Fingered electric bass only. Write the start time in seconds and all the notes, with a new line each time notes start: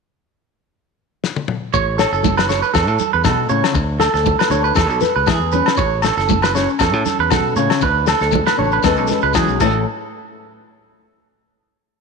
1.74 A1
2.12 F#1
2.75 E2
2.88 A2
3.14 E2
3.50 A2
3.75 D2
4.14 D2
4.50 D2
4.77 E2
4.91 B1
5.16 C#2
5.28 E3
5.40 E2
5.79 A1
6.17 F#1
6.81 E2
6.93 A2
7.19 E2
7.56 A2
7.82 D2
8.21 D2
8.59 A1
8.84 E2
8.99 B1
9.23 C#2
9.35 E3
9.48 B1
9.61 A1